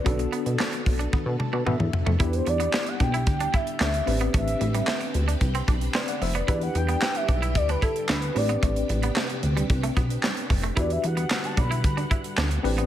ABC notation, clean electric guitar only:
X:1
M:4/4
L:1/16
Q:1/4=112
K:Em
V:1 name="Clean electric guitar"
B, z B, z D z2 D B, z2 D B, z2 A, | E z2 B, z2 D E z D E z D z2 B, | A, z2 G, A, z2 D z C D z C z2 B, | E z2 B, z2 D E z D E z D z2 B, |
A, z2 B, A, z2 G, z A, B, z G, z2 A, | E z2 B, z2 D E z D E z D z2 B, |]